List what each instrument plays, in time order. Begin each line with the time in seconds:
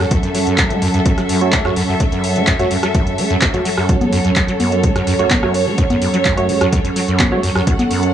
Already playing: string section F#2 F#3 A4, ambient pad C#4 A4 F#5 A5
0.11 acid bass F#2, string section E5, kick, closed hi-hat
0.23 acid bass F#2, closed hi-hat
0.35 acid bass F#3, open hi-hat
0.47 acid bass F#2, closed hi-hat
0.58 kick, clap, closed hi-hat
0.70 acid bass A3, closed hi-hat
0.82 acid bass F#2, open hi-hat
0.94 acid bass F#2, closed hi-hat
1.05 acid bass F#2, kick, closed hi-hat
1.18 acid bass F#3, cross-stick, closed hi-hat
1.29 acid bass F#2, open hi-hat
1.41 synth stab A3 F#4 C#5, closed hi-hat
1.52 acid bass A3, kick, clap, closed hi-hat
1.65 acid bass F#2, synth stab A3 F#4 C#5, cross-stick
1.76 acid bass F#2, open hi-hat
1.89 acid bass F#2
2.00 acid bass F#3, kick, closed hi-hat
2.12 acid bass F#2, closed hi-hat
2.24 open hi-hat
2.36 acid bass A3, closed hi-hat
2.47 acid bass F#2, kick, clap, closed hi-hat
2.59 acid bass F#2, synth stab A3 F#4 C#5, closed hi-hat
2.71 acid bass F#2, open hi-hat
2.83 acid bass F#3, cross-stick, closed hi-hat
2.95 acid bass F#2, kick, closed hi-hat
3.07 closed hi-hat
3.18 acid bass A3, open hi-hat
3.30 acid bass F#2, closed hi-hat
3.41 acid bass F#2, kick, clap, closed hi-hat
3.54 acid bass F#2, synth stab A3 F#4 C#5, closed hi-hat
3.65 acid bass F#3, open hi-hat
3.77 acid bass F#2, cross-stick
3.89 string section C#5, kick, closed hi-hat
4.01 acid bass A3, closed hi-hat, high conga
4.13 acid bass F#2, open hi-hat
4.25 acid bass F#2, closed hi-hat
4.36 acid bass F#2, kick, clap, closed hi-hat
4.48 acid bass F#3, closed hi-hat
4.60 acid bass F#2, open hi-hat, high conga
4.72 closed hi-hat
4.82 acid bass A3, ambient pad C#6, kick, closed hi-hat
4.96 acid bass F#2, cross-stick, closed hi-hat
5.07 acid bass F#2, open hi-hat
5.19 acid bass F#2, synth stab A3 F#4 C#5, closed hi-hat
5.30 acid bass F#3, kick, clap, closed hi-hat, high conga
5.43 acid bass F#2, synth stab A3 F#4 C#5, cross-stick
5.54 open hi-hat
5.67 acid bass A3
5.78 acid bass F#2, kick, closed hi-hat
5.90 acid bass F#2, closed hi-hat, high conga
6.02 acid bass F#2, open hi-hat
6.14 acid bass F#3, closed hi-hat
6.25 acid bass F#2, kick, clap, closed hi-hat
6.37 synth stab A3 F#4 C#5, closed hi-hat
6.49 acid bass A3, open hi-hat
6.61 acid bass F#2, cross-stick, closed hi-hat
6.72 acid bass F#2, kick, closed hi-hat
6.84 acid bass F#2, closed hi-hat
6.96 acid bass F#3, open hi-hat
7.08 acid bass F#2, closed hi-hat
7.19 kick, clap, closed hi-hat, high conga
7.32 synth stab A3 F#4 C#5, acid bass A3
7.43 acid bass F#2, open hi-hat
7.55 acid bass F#2, cross-stick
7.67 acid bass F#2, string section F#5, kick, closed hi-hat
7.79 acid bass F#3, closed hi-hat, high conga
7.91 acid bass F#2, open hi-hat
8.03 closed hi-hat